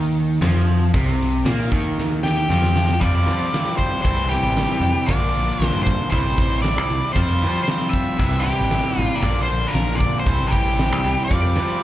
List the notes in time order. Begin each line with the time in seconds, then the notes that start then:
Already playing: D#2 D#3
0.41 F2 F3, snare, open hi-hat
0.94 C2 C3, kick, open hi-hat
1.07 snare
1.21 snare
1.45 A#2 A#3, snare, open hi-hat
1.72 D#2 D#3, kick
1.98 snare
2.23 G4, snare
2.49 F2 F3, snare
2.63 snare
2.76 snare
2.89 snare
3.00 F2 F3 G3 C4 F4 G4 D5, kick, closed hi-hat
3.26 F3 C4 F4 G4, snare, closed hi-hat
3.53 F3 C4 F4 G4, snare, closed hi-hat
3.78 C5, kick, closed hi-hat
4.02 C2 C3 E3 G3 C4 C5, kick, closed hi-hat
4.06 E4 G4
4.29 G4, snare, closed hi-hat
4.34 C4 E4
4.42 A1
4.57 G3 C4 E4 G4, snare, closed hi-hat
4.81 F2 G4, closed hi-hat
4.85 C4 E4
5.06 A#1 A#2 D3 F4 D5, kick, closed hi-hat
5.11 F3 A#3 D4 A#4
5.35 F3 A#3 D4 A#4, snare, closed hi-hat
5.60 A#1 F3 A#3 D4 A#4, snare, closed hi-hat
5.65 C5
5.73 G2
5.83 C5, kick
5.87 closed hi-hat
6.11 C2 C3 E3 G3 C4 E4 G4 C5, kick, closed hi-hat
6.25 A1
6.37 C4 E4 G4, kick, closed hi-hat
6.62 G3 C4 E4 G4 D5, snare, closed hi-hat
6.78 C2
6.89 C2 C4 E4 G4, closed hi-hat
7.13 F2 F3 G3 C4 F4 G4 C5, kick, closed hi-hat
7.41 F3 F4 G4, closed hi-hat
7.63 F3 C4 C5
7.67 F4 G4, snare, closed hi-hat
7.89 E5
7.93 kick, closed hi-hat
8.18 C2 C3 E3 G3 C4 E4 G4, kick, closed hi-hat
8.40 G4
8.45 C4 E4 G4, snare, closed hi-hat
8.60 A1
8.71 G3 C4 E4, snare, closed hi-hat
8.97 A1 C4 E4 F4 G4, closed hi-hat
9.15 D5
9.23 A#1 A#2 D3 F3 A#3 D4 F4 A#4, kick, closed hi-hat
9.43 C5
9.48 F3 A#3 D4 A#4, closed hi-hat
9.67 A#4
9.74 A#1 F3 A#3 D4 A#4, snare, closed hi-hat
9.88 A#1
9.95 D5
10.00 kick, closed hi-hat
10.20 C5
10.25 C2 C3 E3 G3 C4 E4 G4, kick, closed hi-hat
10.40 A1
10.48 G4
10.53 C4 E4, kick, snare, closed hi-hat
10.79 G3 C4 E4 G4, snare, closed hi-hat
10.92 C2
11.04 C2 E4 G4, closed hi-hat
11.09 C4
11.24 D5
11.30 F2 F3 G3 C4 F4 G4, kick, closed hi-hat
11.56 F3 F4 G4, snare, closed hi-hat
11.61 C4